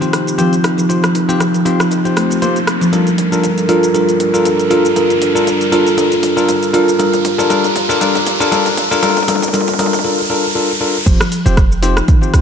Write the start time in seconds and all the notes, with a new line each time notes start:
Already playing: C4 F4 G4, riser
0.01 C4 F4 G4 C5, closed hi-hat, shaker
0.13 cross-stick, open hi-hat
0.27 closed hi-hat, shaker
0.38 F3 C4 F4 G4 C5, closed hi-hat, mid tom, shaker
0.53 closed hi-hat, shaker
0.64 D#4, cross-stick, open hi-hat
0.78 F3, closed hi-hat, shaker
0.89 C4 F4 G4 C5, closed hi-hat, mid tom, shaker
1.03 F3, cross-stick, closed hi-hat, shaker
1.15 D#4, open hi-hat
1.29 C4 D#4 F4 G4 C5, closed hi-hat, shaker
1.40 F3, cross-stick, closed hi-hat, mid tom, shaker
1.54 F3, closed hi-hat, shaker
1.65 C4 D#4 F4 G4 C5, open hi-hat
1.80 F3, cross-stick, closed hi-hat, shaker
1.91 D#4, closed hi-hat, mid tom, shaker
2.05 C4 F4 G4 C5, closed hi-hat, shaker
2.16 A3, cross-stick, open hi-hat
2.30 A3, closed hi-hat, shaker
2.42 A#3 C4 F4 G4 C5, closed hi-hat, mid tom, shaker
2.56 closed hi-hat, shaker
2.67 cross-stick, open hi-hat
2.81 F3, closed hi-hat, shaker
2.93 G3 D4 F4 A4 A#4, closed hi-hat, mid tom, shaker
3.07 closed hi-hat, shaker
3.18 open hi-hat, mid tom
3.32 D4 F4 A4 A#4, closed hi-hat, shaker
3.44 closed hi-hat, mid tom, shaker
3.58 closed hi-hat, shaker
3.69 D4 F4 A4 A#4, open hi-hat, mid tom
3.83 closed hi-hat, shaker
3.94 G3 D4 F4 A4 A#4, closed hi-hat, mid tom, shaker
4.09 closed hi-hat, shaker
4.20 open hi-hat, mid tom
4.34 D4 F4 A4 A#4, closed hi-hat, shaker
4.45 closed hi-hat, mid tom, shaker
4.59 closed hi-hat, shaker
4.70 D4 F4 A4 A#4, open hi-hat, mid tom
4.85 closed hi-hat, shaker
4.96 G3 D4 F4 A4 A#4, closed hi-hat, mid tom, shaker
5.10 closed hi-hat, shaker
5.22 open hi-hat, mid tom
5.35 D4 F4 A4 A#4, closed hi-hat, shaker
5.47 closed hi-hat, mid tom, shaker
5.61 closed hi-hat, shaker
5.72 D4 F4 A4 A#4, open hi-hat, mid tom
5.87 closed hi-hat, shaker
5.97 G3 D4 F4 A4 A#4, closed hi-hat, mid tom, shaker
6.12 closed hi-hat, shaker
6.23 open hi-hat, mid tom
6.37 D4 F4 A4 A#4, closed hi-hat, shaker
6.49 closed hi-hat, mid tom, shaker
6.63 closed hi-hat, shaker
6.74 D4 F4 A4 A#4, open hi-hat, mid tom
6.88 closed hi-hat, shaker
6.99 G3 D4 F4 G4 A4 A#4, closed hi-hat, mid tom, shaker
7.13 closed hi-hat, mid tom, shaker
7.25 open hi-hat, mid tom
7.39 D4 F4 A4 A#4, closed hi-hat, mid tom, shaker
7.50 G3 D4 F4 A4 A#4, closed hi-hat, mid tom, shaker
7.64 closed hi-hat, mid tom, shaker
7.76 open hi-hat, mid tom
7.89 D4 F4 A4 A#4, closed hi-hat, mid tom, shaker
8.01 G3 D4 F4 A4 A#4, closed hi-hat, mid tom, shaker
8.15 closed hi-hat, mid tom, shaker
8.27 open hi-hat, mid tom
8.40 D4 F4 A4 A#4, closed hi-hat, mid tom, shaker
8.52 G3 D4 F4 A4 A#4, closed hi-hat, mid tom, shaker
8.66 closed hi-hat, mid tom, shaker
8.77 open hi-hat, mid tom
8.91 D4 F4 A4 A#4, closed hi-hat, mid tom, shaker
9.03 G3 D4 F4 A4 A#4, closed hi-hat, mid tom, shaker
9.10 mid tom
9.17 closed hi-hat, mid tom, shaker
9.23 mid tom
9.28 G3 D4 F4 A4 A#4, open hi-hat, mid tom
9.35 mid tom
9.42 closed hi-hat, mid tom, shaker
9.48 mid tom
9.53 G3 D4 F4 A4 A#4, closed hi-hat, mid tom, shaker
9.61 mid tom
9.68 closed hi-hat, mid tom, shaker
9.73 mid tom
9.79 G3 D4 F4 A4 A#4, open hi-hat, mid tom
9.86 mid tom
9.93 closed hi-hat, mid tom, shaker
9.99 mid tom
10.04 D4 F4 A4 A#4
10.30 D4 F4 A4 A#4
10.55 D4 F4 A4 A#4
10.81 D4 F4 A4 A#4
11.06 F1 F3 C4 F4 G4 C5 G5 C6, kick, closed hi-hat, crash, shaker
11.21 cross-stick, shaker
11.32 open hi-hat, shaker
11.46 F1 C4 F4 G4 C5, closed hi-hat, shaker
11.57 kick, cross-stick, closed hi-hat, shaker
11.72 shaker
11.82 C4 D#4 F4 G4 C5, open hi-hat, shaker
11.97 cross-stick, closed hi-hat, shaker
12.08 D#3, kick, closed hi-hat, shaker
12.22 C4 F4 G4 C5, shaker
12.34 C2, cross-stick, open hi-hat, shaker